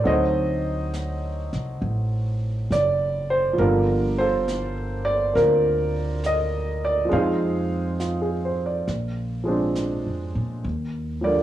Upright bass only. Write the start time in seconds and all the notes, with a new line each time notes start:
0.05 D2
1.53 C2
1.82 A1
2.70 F#1
3.58 G1
5.35 D2
7.11 F2
8.88 A#1
10.06 F2
10.35 A#2
10.64 D#2